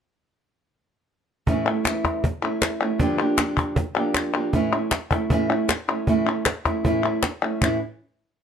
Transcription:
1.47 1.65 A2 medium
1.47 1.66 E3 medium
1.47 1.66 A3 medium
1.47 1.66 C#4 loud
1.47 1.65 E4 medium
1.47 cajon bass medium
1.66 1.85 A3 medium
1.66 1.85 C#4 medium
1.66 1.84 E4 medium
1.85 2.23 E3 medium
1.85 2.23 A3 medium
1.85 2.23 C#4 medium
1.85 2.24 E4 medium
1.85 cajon slap loud
1.85 clap loud
2.04 cajon bass medium
2.04 cajon slap soft
2.24 muted nylon-string guitar stroke medium
2.24 cajon bass loud
2.42 2.81 A3 medium
2.42 2.80 C#4 medium
2.42 2.80 E4 medium
2.42 cajon slap soft
2.62 cajon slap loud
2.62 clap loud
2.81 3.00 A3 soft
2.81 3.00 C#4 medium
2.81 2.99 E4 medium
3.00 3.18 G2 medium
3.00 3.18 D3 loud
3.00 3.19 F3 medium
3.00 3.19 A#3 medium
3.00 3.19 D4 medium
3.00 3.18 G4 loud
3.00 cajon bass loud
3.20 3.37 F3 medium
3.20 3.38 A#3 medium
3.20 3.38 D4 medium
3.20 3.38 G4 medium
3.38 3.76 F3 medium
3.38 3.76 A#3 medium
3.38 3.76 D4 medium
3.38 3.77 G4 medium
3.38 cajon slap loud
3.38 clap medium
3.57 cajon bass medium
3.76 muted nylon-string guitar stroke medium
3.76 cajon bass loud
3.95 4.34 F3 medium
3.95 4.34 A#3 medium
3.95 4.34 D4 medium
3.95 4.33 G4 medium
3.95 cajon slap soft
4.15 cajon slap loud
4.15 clap loud
4.34 4.53 F3 medium
4.34 4.53 A#3 medium
4.34 4.53 D4 medium
4.34 4.52 G4 medium
4.53 4.71 A2 medium
4.53 4.72 E3 medium
4.53 4.72 A3 medium
4.53 4.72 C#4 medium
4.53 4.71 E4 medium
4.53 cajon bass medium
4.72 4.91 A3 medium
4.72 4.91 C#4 medium
4.72 4.91 E4 medium
4.72 cajon slap soft
4.91 muted nylon-string guitar stroke medium
4.91 cajon slap loud
4.91 clap loud
5.11 5.30 A3 soft
5.11 5.30 C#4 medium
5.11 5.29 E4 medium
5.11 cajon bass medium
5.30 5.49 A2 medium
5.30 5.49 E3 medium
5.30 5.49 A3 medium
5.30 5.49 C#4 loud
5.30 5.48 E4 loud
5.30 cajon bass loud
5.50 5.69 A3 soft
5.50 5.68 C#4 medium
5.50 5.68 E4 medium
5.69 muted nylon-string guitar stroke medium
5.69 cajon slap loud
5.69 clap loud
5.88 6.07 A3 soft
5.88 6.07 C#4 medium
5.88 6.06 E4 medium
5.88 clap medium
6.07 6.26 A2 medium
6.07 6.26 E3 medium
6.07 6.26 A3 medium
6.07 6.26 C#4 medium
6.07 6.26 E4 loud
6.07 cajon bass medium
6.27 6.45 A3 medium
6.27 6.45 C#4 medium
6.27 6.45 E4 medium
6.46 muted nylon-string guitar stroke medium
6.46 cajon slap loud
6.46 clap loud
6.65 6.84 A3 medium
6.65 6.84 C#4 medium
6.65 6.84 E4 medium
6.65 cajon bass medium
6.65 cajon slap soft
6.84 7.03 A2 medium
6.84 7.03 E3 medium
6.84 7.03 A3 loud
6.84 7.03 C#4 medium
6.84 7.02 E4 loud
6.84 cajon bass loud
7.04 7.22 A3 soft
7.04 7.23 C#4 medium
7.04 7.22 E4 medium
7.04 cajon slap soft
7.23 muted nylon-string guitar stroke medium
7.23 cajon slap loud
7.23 clap medium
7.42 7.61 A3 soft
7.42 7.61 C#4 medium
7.42 7.61 E4 medium
7.61 7.77 A2 medium
7.61 7.77 E3 medium
7.61 7.77 A3 medium
7.61 7.78 C#4 medium
7.61 7.78 E4 loud
7.61 cajon bass medium
7.61 clap loud

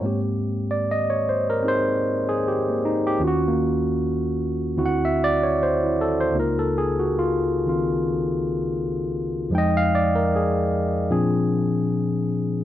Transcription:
0.00 3.19 G#2 soft
0.00 3.20 G#3 soft
0.00 2.68 A#3 soft
0.00 0.19 C#5 soft
0.05 1.62 C4 soft
0.05 2.47 G4 soft
0.71 0.83 D5 medium
0.91 1.13 D#5 medium
1.10 1.36 C#5 medium
1.29 1.45 C5 medium
1.50 1.62 A#4 medium
1.63 3.21 C4 soft
1.63 2.84 D#4 soft
1.63 2.27 G#4 soft
1.68 2.27 C5 medium
2.29 2.42 G#4 medium
2.48 2.71 G4 medium
2.70 2.95 A#3 soft
2.85 3.03 D#4 medium
3.07 3.20 G4 medium
3.19 4.77 D#2 medium
3.19 4.78 D#3 soft
3.19 4.79 C#4 soft
3.19 4.79 F4 soft
3.24 3.26 F#4 medium
3.24 3.50 F#4 medium
3.48 3.63 A#3 medium
4.77 6.35 D2 soft
4.77 6.35 D3 soft
4.77 6.35 C4 soft
4.77 5.83 E4 soft
4.77 6.36 F#4 medium
4.86 5.08 F#5 medium
5.05 5.30 E5 medium
5.24 5.40 D5 medium
5.43 5.56 C#5 medium
5.63 5.85 C5 medium
5.84 6.09 E4 soft
6.01 6.18 A4 medium
6.21 6.34 C5 medium
6.32 9.50 C#2 medium
6.32 9.50 C#3 soft
6.32 9.51 A#3 soft
6.32 9.52 D#4 soft
6.37 7.18 F4 soft
6.37 6.63 A#4 medium
6.59 6.86 A4 medium
6.78 6.96 G#4 medium
6.99 7.13 F#4 medium
7.19 7.49 F4 medium
7.66 9.51 D#3 soft
7.66 9.52 C4 soft
7.66 9.53 F4 soft
9.50 11.09 F2 medium
9.50 11.10 F3 medium
9.50 11.10 G#3 medium
9.54 11.11 D#4 soft
9.54 9.81 D#5 medium
9.54 11.12 G5 medium
9.77 10.03 F5 medium
9.95 10.12 D5 medium
10.15 10.29 A#4 medium
10.36 11.09 G#4 medium
11.10 12.64 A#2 medium
11.10 12.64 F3 medium
11.10 12.64 C4 medium
11.10 12.64 D4 soft
11.10 12.64 G#4 medium

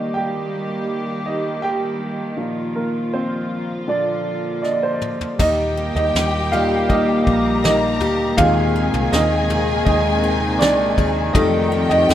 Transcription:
0.00 0.85 D#3 soft
0.00 3.84 D#3 medium
0.00 0.86 G3 soft
0.00 2.35 G3 medium
0.00 0.86 A#3 soft
0.00 3.83 A#3 medium
0.00 0.14 D#4 soft
0.00 2.35 G4 medium
0.00 0.16 D#5 medium
0.14 0.86 G4 medium
0.14 0.85 G5 medium
1.26 1.62 D#4 medium
1.26 1.64 D#5 medium
1.62 2.34 G4 medium
1.62 2.33 G5 medium
2.37 3.45 A#2 soft
2.37 3.46 F3 soft
2.37 5.36 F3 medium
2.37 3.46 D#4 soft
2.37 5.36 F4 medium
2.75 3.11 A#3 soft
2.75 3.14 A#4 medium
3.14 3.84 C4 medium
3.14 3.84 C5 medium
3.88 4.38 A#2 soft
3.88 5.38 D3 medium
3.88 4.38 F3 soft
3.88 5.38 A#3 medium
3.88 4.38 D4 medium
3.88 4.60 D5 medium
4.62 5.35 D4 soft
4.62 4.72 D5 medium
4.62 4.73 D#5 medium
4.62 snare soft
4.73 4.83 D5 medium
4.83 4.92 C5 medium
4.93 5.02 D5 medium
5.01 mid tom medium
5.21 floor tom medium
5.39 5.92 D#2 loud
5.39 11.31 A#2 medium
5.39 8.38 D#3 medium
5.39 8.36 G3 medium
5.39 8.36 A#3 medium
5.39 5.93 D#4 medium
5.39 7.23 G4 medium
5.39 6.51 G4 medium
5.39 8.36 G4 medium
5.39 5.94 D#5 medium
5.39 7.23 G5 medium
5.39 kick loud
5.39 floor tom medium
5.39 crash medium
5.77 7.63 A#3 medium
5.95 6.13 D#2 medium
5.95 6.49 D#4 medium
5.95 6.48 D#5 medium
5.95 floor tom medium
6.15 7.23 D#2 medium
6.15 7.27 D#4 medium
6.15 snare loud
6.52 8.35 G3 medium
6.52 8.35 A#3 soft
6.52 6.91 D#4 medium
6.52 6.88 F4 medium
6.52 8.00 G4 medium
6.52 6.90 F5 medium
6.52 floor tom medium
6.89 8.46 G3 medium
6.89 7.61 D#4 medium
6.89 7.63 D#5 medium
6.89 kick medium
7.27 8.01 A#1 medium
7.27 9.12 D#4 medium
7.27 8.37 A#4 medium
7.27 8.37 A#5 medium
7.27 kick medium
7.64 8.46 A#3 medium
7.64 8.17 D#4 medium
7.64 8.16 D#5 medium
7.64 snare loud
8.00 8.36 D2 medium
8.00 8.39 G4 medium
8.00 floor tom medium
8.37 8.90 D#2 loud
8.37 12.14 C3 medium
8.37 12.14 D#3 medium
8.37 11.38 D#3 medium
8.37 11.31 G#3 medium
8.37 11.31 C4 soft
8.37 9.13 D#4 medium
8.37 9.09 F4 medium
8.37 11.31 G#4 medium
8.37 9.49 G#4 medium
8.37 9.15 F5 medium
8.37 11.31 G#5 medium
8.37 kick medium
8.37 floor tom loud
8.76 10.60 C4 medium
8.94 9.11 C2 medium
8.94 floor tom medium
9.12 9.83 D#2 medium
9.12 10.23 D#4 medium
9.12 9.84 D#4 medium
9.12 9.84 D#5 medium
9.12 snare loud
9.50 10.97 G#4 medium
9.50 floor tom medium
9.85 10.61 D#2 medium
9.85 11.35 G#3 medium
9.85 10.57 D#4 medium
9.85 10.56 D#5 medium
9.85 kick medium
10.24 12.09 D#4 medium
10.59 10.95 C2 medium
10.59 11.71 C4 medium
10.59 11.31 D4 medium
10.59 11.36 D5 loud
10.59 snare loud
10.98 11.32 D#2 medium
10.98 11.35 G#4 medium
10.98 kick medium
10.98 floor tom medium
11.33 11.86 F2 loud
11.33 12.14 F3 medium
11.33 12.14 G3 medium
11.33 12.14 A3 medium
11.33 12.14 A3 soft
11.33 11.87 D#4 medium
11.33 12.14 G4 medium
11.33 12.14 A4 medium
11.33 11.86 D#5 medium
11.33 12.14 G5 loud
11.33 kick loud
11.33 floor tom medium
11.72 12.14 C4 medium
11.89 12.08 F2 medium
11.89 12.14 D#4 medium
11.89 12.14 D#5 medium
11.89 floor tom medium
12.09 12.14 F2 medium
12.09 12.14 D#4 medium
12.09 snare loud

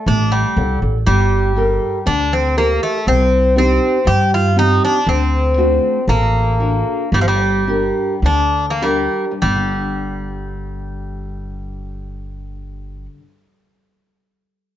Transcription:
0.06 0.42 A1 medium
0.06 0.55 A3 medium
0.06 0.33 D4 medium
0.32 0.78 G3 medium
0.57 0.79 C2 medium
0.57 0.97 A4 soft
0.57 0.97 D5 soft
0.57 0.97 F#5 soft
0.82 1.04 A1 medium
1.07 1.77 G1 loud
1.07 2.10 G3 medium
1.07 1.55 G3 medium
1.56 1.97 G4 soft
1.56 1.97 A4 soft
1.56 1.97 A#4 medium
2.06 2.77 D2 medium
2.06 2.55 D3 medium
2.06 2.33 D4 loud
2.33 2.57 C4 medium
2.57 2.81 A#3 medium
2.57 2.97 G4 soft
2.57 2.97 A4 soft
2.57 2.97 A#4 medium
2.83 3.06 A3 medium
3.06 3.77 C2 medium
3.06 3.55 C3 medium
3.06 3.54 C4 loud
3.56 3.96 C4 soft
3.56 4.09 C4 medium
3.56 3.96 D#4 soft
3.56 3.97 G4 medium
4.05 4.77 G2 medium
4.05 4.55 G3 medium
4.05 4.30 G4 loud
4.34 4.56 F4 medium
4.56 4.96 C4 medium
4.56 4.97 D#4 soft
4.56 4.84 D#4 loud
4.56 4.97 G4 medium
4.85 5.07 D4 loud
5.06 5.77 D2 medium
5.06 5.55 D3 medium
5.06 6.05 C4 medium
5.57 5.98 A3 medium
5.57 5.98 D4 soft
5.57 5.98 F#4 medium
6.08 6.81 A1 loud
6.08 7.09 A#3 medium
6.08 6.58 A4 medium
6.60 7.02 D4 soft
6.60 7.03 F#4 medium
6.60 7.02 A4 medium
7.12 7.89 G1 loud
7.12 7.66 G3 medium
7.12 7.20 G3 medium
7.21 7.27 F3 medium
7.28 8.19 G3 medium
7.67 8.12 D4 soft
7.67 8.13 G4 soft
7.67 8.13 A#4 medium
8.22 9.06 D2 medium
8.22 8.80 D3 medium
8.22 8.65 D4 medium
8.70 8.84 A#3 medium
8.81 9.24 G3 medium
8.81 9.30 D4 soft
8.81 9.30 G4 soft
8.81 9.31 A#4 medium
9.31 12.95 G2 soft
9.42 13.06 G1 medium
9.42 13.05 G3 medium
9.55 13.19 D3 medium

